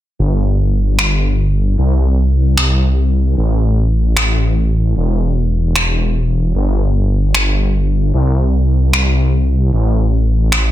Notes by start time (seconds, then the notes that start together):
0.19 G1
0.99 finger snap
1.78 C2
2.58 finger snap
3.37 A1
4.17 finger snap
4.96 E1
5.76 finger snap
6.55 G1
7.35 finger snap
8.14 C2
8.93 finger snap
9.73 A1
10.52 finger snap